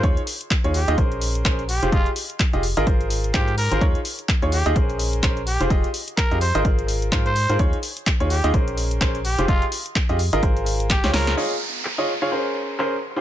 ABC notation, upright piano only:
X:1
M:4/4
L:1/16
Q:"Swing 16ths" 1/4=127
K:Ebmix
V:1 name="Upright piano"
[EFAd] z4 [EFAd] z [EFAe] [DABc]4 [DABc] z2 [FGAc] | [FGAe] z4 [FGAe] z [FABe] z4 [FABc] z2 [FABc] | [EFAd] z4 [EFAd] z [EFAe] [DABc]4 [DABc] z2 [FGAc] | [FGAe] z4 [FGAe] z [FABe] z4 [FABc] z2 [FABc] |
[EFAd] z4 [EFAd] z [EFAe] [DBc]4 [DABc] z2 [FGAc] | [FGAe] z4 [FGAe] z [FABe] [FABc]4 z [FAcd] [FAcd]2 | [FAde] z4 [FAde] z [FAdf] [DABc]4 [DABc] z2 [FGAc] |]